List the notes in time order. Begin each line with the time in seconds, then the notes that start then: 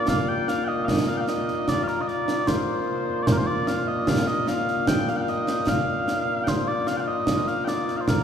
Already playing: A#2 A#3
0.08 F5, concert bass drum, snare
0.28 G5
0.48 F5, snare
0.65 D#5 G5
0.85 D#5 F5, concert bass drum, snare
1.08 F5, snare
1.17 F5 G5
1.28 D#5, snare
1.48 snare
1.68 D5, concert bass drum, snare
1.83 F5
1.88 A#4, snare
2.01 D#5
2.07 D5, snare
2.28 snare
2.47 C5, concert bass drum, snare
3.23 D5
3.27 C5, concert bass drum, snare
3.32 A#4
3.38 C5
3.47 D5
3.67 F5, snare
3.88 D#5
4.07 F5, concert bass drum, snare
4.27 D#5, snare
4.48 F5, snare
4.68 snare
4.87 G5, concert bass drum, snare
5.08 F5, snare
5.17 G5
5.21 F5
5.27 D#5, snare
5.47 snare
5.67 F5, concert bass drum, snare
6.08 snare
6.44 G5, concert bass drum, snare
6.48 C5
6.68 D5
6.87 F5, snare
6.97 F5 G5
7.07 D#5
7.27 concert bass drum, snare
7.47 F5, snare
7.65 D5 G5, snare
7.88 snare
7.97 F5
8.01 C5
8.08 A#4, concert bass drum, snare